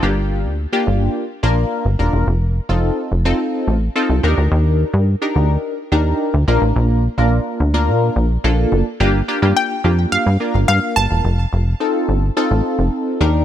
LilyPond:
<<
  \new Staff \with { instrumentName = "Synth pluck" } { \time 4/4 \key g \minor \tempo 4 = 107 r1 | r1 | r1 | r1 |
r4 g''4 f''4 f''8 a''8~ | a''8 r2. r8 | }
  \new Staff \with { instrumentName = "Analog polysynth" } { \time 4/4 \key g \minor <bes d' f' g'>4 r16 <bes d' f' g'>4 r16 <bes d' f' bes'>8. r16 <bes d' f' bes'>8 | r8. <c' ees' f' a'>8. r16 <c' ees' f' a'>4 r16 <c' ees' f' a'>8 <d' ees' g' bes'>8~ | <d' ees' g' bes'>4 r16 <d' ees' g' bes'>4 r16 <d' ees' g' bes'>8. r16 <bes d' f' bes'>8~ | <bes d' f' bes'>8 r16 <bes d' f' bes'>8. r16 <bes d' f' bes'>4 r16 <bes d' f' a'>8. r16 |
<bes d' f' g'>16 r16 <bes d' f' g'>16 <bes d' f' g'>8 r16 <bes d' f' g'>8. r16 <bes d' f' bes'>4. | r4 <c' ees' f' a'>8. r16 <c' ees' f' a'>4. <d' ees' g' bes'>8 | }
  \new Staff \with { instrumentName = "Analog synth bass" } { \clef bass \time 4/4 \key g \minor g,,8. d,8 r16 g,,8 r8 bes,,8 r16 g,,16 ees,,16 e,,16 | f,,8. f,,8 r16 f,,8 r8 a,,8 r16 c,16 ees,16 d,16 | ees,8. g,8 r16 d,8 r8 ees,8 r16 d,16 bes,,16 a,,16 | bes,,8. bes,,8 r16 d,8 bes,8 bes,,8 bes,,8 fis,,16 r16 |
g,,8 r16 g,16 r8 f,8 g,16 g,16 r16 g,,16 g,16 r16 g,,16 e,,16 | f,,8 f,,8 r8 g,,8 r16 a,,16 r16 f,,16 r8 ees,8 | }
>>